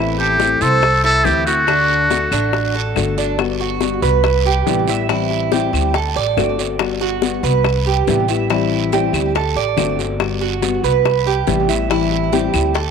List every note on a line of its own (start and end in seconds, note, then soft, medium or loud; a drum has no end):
0.00 0.55 A1 medium
0.00 0.38 E3 medium
0.00 0.39 A3 medium
0.00 0.39 C4 medium
0.00 0.18 E4 medium
0.00 0.40 E4 medium
0.19 0.63 G4 medium
0.19 0.61 A4 medium
0.19 high bongo soft
0.39 0.60 E3 medium
0.39 0.61 A3 medium
0.39 0.61 C4 medium
0.39 0.60 E4 medium
0.39 high bongo medium
0.39 short guiro medium
0.61 1.21 C2 medium
0.61 0.82 A3 soft
0.61 0.82 C4 soft
0.61 0.82 E4 soft
0.61 1.04 A4 loud
0.61 1.03 C5 medium
0.61 high bongo soft
0.61 short guiro medium
0.82 muted nylon-string guitar stroke medium
0.82 high bongo medium
0.82 long guiro medium
0.82 claves medium
1.04 1.46 E4 medium
1.04 1.26 A4 loud
1.04 high bongo soft
1.25 2.26 D2 medium
1.25 1.46 E3 medium
1.25 1.46 A3 medium
1.25 1.46 C4 medium
1.25 1.45 E4 medium
1.25 1.46 G4 medium
1.25 high bongo soft
1.25 low bongo medium
1.25 short guiro medium
1.46 1.67 A3 soft
1.46 1.67 C4 soft
1.46 1.67 E4 soft
1.46 2.92 F#4 medium
1.46 1.68 F#4 medium
1.46 short guiro medium
1.67 2.09 D3 medium
1.67 2.10 A3 medium
1.67 2.10 D4 medium
1.67 2.11 F#4 medium
1.67 high bongo medium
1.67 long guiro medium
1.67 claves medium
1.90 high bongo soft
2.10 2.31 D3 medium
2.10 2.31 A3 medium
2.10 2.32 D4 medium
2.10 2.31 F#4 medium
2.10 2.32 A4 medium
2.10 high bongo soft
2.10 short guiro medium
2.31 2.92 A1 medium
2.31 2.53 A3 soft
2.31 2.74 D4 medium
2.31 2.53 D4 soft
2.31 2.53 F#4 soft
2.31 high bongo soft
2.31 short guiro medium
2.31 claves medium
2.53 muted nylon-string guitar stroke soft
2.53 high bongo medium
2.53 long guiro medium
2.74 3.16 A4 medium
2.74 high bongo soft
2.95 3.97 G1 medium
2.95 3.16 D3 medium
2.95 3.17 A3 medium
2.95 3.17 D4 medium
2.95 3.16 F#4 medium
2.95 high bongo soft
2.95 low bongo medium
2.95 short guiro medium
2.95 claves medium
3.17 3.38 A3 soft
3.17 3.38 D4 medium
3.17 3.38 D4 soft
3.17 3.38 F#4 soft
3.17 short guiro medium
3.39 3.80 G3 medium
3.39 3.81 B3 medium
3.39 3.82 F#4 medium
3.39 high bongo medium
3.39 long guiro medium
3.39 claves medium
3.60 4.02 F#4 medium
3.60 high bongo soft
3.81 4.02 G3 medium
3.81 4.02 B3 medium
3.81 4.02 F#4 medium
3.81 high bongo medium
3.81 short guiro medium
4.02 4.62 C2 loud
4.02 4.24 B3 soft
4.02 4.23 F#4 soft
4.02 4.44 B4 medium
4.02 high bongo soft
4.02 short guiro medium
4.24 muted nylon-string guitar stroke medium
4.24 high bongo medium
4.24 long guiro medium
4.24 claves medium
4.45 4.87 G4 medium
4.45 high bongo soft
4.67 5.67 A1 medium
4.67 4.87 C3 medium
4.67 4.87 E3 medium
4.67 4.87 G3 medium
4.67 4.87 B3 medium
4.67 4.86 E4 medium
4.67 high bongo soft
4.67 low bongo medium
4.67 short guiro medium
4.87 5.08 G3 soft
4.87 5.09 B3 soft
4.87 5.08 E4 medium
4.87 5.09 E5 medium
4.87 short guiro medium
5.09 5.50 E3 medium
5.09 5.51 G3 medium
5.09 5.51 C4 medium
5.09 5.51 E4 medium
5.09 5.52 E4 medium
5.09 high bongo medium
5.09 long guiro medium
5.09 claves medium
5.31 high bongo soft
5.52 5.72 E3 medium
5.52 5.73 G3 medium
5.52 5.73 C4 medium
5.52 5.72 E4 medium
5.52 5.93 G4 medium
5.52 high bongo medium
5.52 short guiro medium
5.73 6.13 D2 medium
5.73 5.94 G3 soft
5.73 5.94 C4 soft
5.73 5.93 E4 soft
5.73 high bongo soft
5.73 short guiro medium
5.73 claves medium
5.94 6.15 A4 medium
5.94 muted nylon-string guitar stroke medium
5.94 high bongo medium
5.94 long guiro medium
6.16 6.36 A1 medium
6.16 6.57 D5 medium
6.16 high bongo soft
6.37 7.37 G1 medium
6.37 6.58 D3 medium
6.37 6.58 A3 medium
6.37 6.58 C4 medium
6.37 6.57 F#4 medium
6.37 high bongo soft
6.37 low bongo medium
6.37 short guiro medium
6.37 claves medium
6.58 6.79 A3 soft
6.58 6.79 C4 soft
6.58 6.79 F#4 soft
6.58 short guiro medium
6.79 7.20 G3 medium
6.79 7.21 B3 medium
6.79 7.22 F#4 medium
6.79 high bongo medium
6.79 long guiro medium
6.79 claves medium
7.01 7.42 F#4 medium
7.01 high bongo soft
7.21 7.42 G3 medium
7.21 7.43 B3 medium
7.21 7.42 F#4 medium
7.21 high bongo medium
7.21 short guiro medium
7.43 8.03 C2 loud
7.43 7.64 B3 soft
7.43 7.64 F#4 soft
7.43 7.85 B4 medium
7.43 high bongo soft
7.43 short guiro medium
7.64 muted nylon-string guitar stroke medium
7.64 high bongo medium
7.64 long guiro medium
7.64 claves medium
7.86 8.28 G4 medium
7.86 high bongo soft
8.07 9.08 A1 medium
8.07 8.28 C3 medium
8.07 8.28 E3 medium
8.07 8.28 G3 medium
8.07 8.29 B3 medium
8.07 8.28 E4 medium
8.07 high bongo soft
8.07 low bongo medium
8.07 short guiro medium
8.28 8.50 G3 soft
8.28 8.50 B3 soft
8.28 8.50 E4 medium
8.28 8.49 E5 medium
8.28 short guiro medium
8.50 8.92 E3 medium
8.50 8.92 G3 medium
8.50 8.92 C4 medium
8.50 8.91 E4 medium
8.50 8.93 E4 medium
8.50 high bongo medium
8.50 long guiro medium
8.50 claves medium
8.72 high bongo soft
8.92 9.13 E3 medium
8.92 9.14 G3 medium
8.92 9.14 C4 medium
8.92 9.13 E4 medium
8.92 9.34 G4 medium
8.92 high bongo medium
8.92 short guiro medium
9.13 9.53 D2 medium
9.13 9.35 G3 soft
9.13 9.35 C4 soft
9.13 9.34 E4 soft
9.13 high bongo soft
9.13 short guiro medium
9.13 claves medium
9.35 9.56 A4 medium
9.35 muted nylon-string guitar stroke soft
9.35 high bongo medium
9.35 long guiro medium
9.56 9.76 A1 medium
9.56 9.98 D5 medium
9.56 high bongo soft
9.77 10.77 G1 medium
9.77 9.97 D3 medium
9.77 9.98 A3 medium
9.77 9.98 C4 medium
9.77 9.97 F#4 medium
9.77 high bongo soft
9.77 low bongo medium
9.77 short guiro medium
9.77 claves medium
9.99 10.19 A3 soft
9.99 10.20 C4 soft
9.99 10.19 F#4 soft
9.99 short guiro medium
10.19 10.60 G3 medium
10.19 10.61 B3 medium
10.19 10.62 F#4 medium
10.19 high bongo medium
10.19 long guiro medium
10.19 claves medium
10.41 10.82 F#4 medium
10.41 high bongo soft
10.61 10.82 G3 medium
10.61 10.83 B3 medium
10.61 10.82 F#4 medium
10.61 high bongo medium
10.61 short guiro medium
10.83 11.43 C2 medium
10.83 11.04 B3 soft
10.83 11.04 F#4 medium
10.83 11.25 B4 medium
10.83 high bongo soft
10.83 short guiro medium
11.05 muted nylon-string guitar stroke medium
11.05 high bongo medium
11.05 long guiro medium
11.05 claves medium
11.26 11.68 G4 medium
11.26 high bongo soft
11.47 12.47 A1 medium
11.47 11.68 C3 medium
11.47 11.68 E3 medium
11.47 11.68 G3 medium
11.47 11.69 B3 medium
11.47 11.67 E4 medium
11.47 high bongo soft
11.47 low bongo medium
11.47 short guiro medium
11.68 11.89 G3 soft
11.68 11.90 B3 soft
11.68 11.89 E4 soft
11.68 11.89 E5 medium
11.68 short guiro medium
11.89 12.31 E3 medium
11.89 12.31 G3 medium
11.89 12.32 C4 medium
11.89 12.31 E4 medium
11.89 12.32 E4 medium
11.89 high bongo medium
11.89 long guiro medium
11.89 claves medium
12.11 high bongo soft
12.32 12.53 E3 medium
12.32 12.53 G3 medium
12.32 12.53 C4 medium
12.32 12.52 E4 medium
12.32 12.73 G4 medium
12.32 high bongo medium
12.32 short guiro medium
12.53 12.91 D2 medium
12.53 12.75 G3 soft
12.53 12.74 C4 soft
12.53 12.74 E4 soft
12.53 high bongo soft
12.53 short guiro medium
12.53 claves medium
12.74 12.91 A4 medium
12.74 muted nylon-string guitar stroke medium
12.74 high bongo medium
12.74 long guiro medium